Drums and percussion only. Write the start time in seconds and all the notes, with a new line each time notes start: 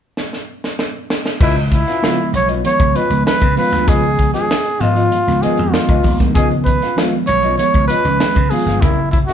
0.17 snare
0.33 snare
0.64 snare
0.79 snare
1.10 snare
1.26 snare
1.41 kick, crash
1.72 kick, closed hi-hat
1.88 snare, closed hi-hat
2.04 snare
2.34 closed hi-hat
2.49 closed hi-hat
2.65 closed hi-hat
2.80 kick, closed hi-hat
2.96 closed hi-hat
3.10 closed hi-hat
3.27 snare
3.42 kick, closed hi-hat
3.57 open hi-hat
3.74 snare, closed hi-hat
3.88 kick, closed hi-hat
4.03 closed hi-hat
4.19 kick, closed hi-hat
4.34 snare, closed hi-hat
4.51 snare
4.66 closed hi-hat
4.81 closed hi-hat
4.96 closed hi-hat
5.12 closed hi-hat
5.28 snare, closed hi-hat
5.43 closed hi-hat
5.57 closed hi-hat
5.74 snare
5.89 kick
6.04 kick, open hi-hat
6.20 kick, snare, closed hi-hat
6.35 kick, closed hi-hat
6.51 closed hi-hat
6.66 kick, closed hi-hat
6.82 snare, closed hi-hat
6.98 snare
7.12 closed hi-hat
7.27 closed hi-hat
7.43 closed hi-hat
7.59 closed hi-hat
7.74 kick, closed hi-hat
7.90 closed hi-hat
8.05 closed hi-hat
8.20 snare
8.36 kick
8.51 open hi-hat
8.68 snare, closed hi-hat
8.82 kick, closed hi-hat
9.13 kick, closed hi-hat
9.28 snare, closed hi-hat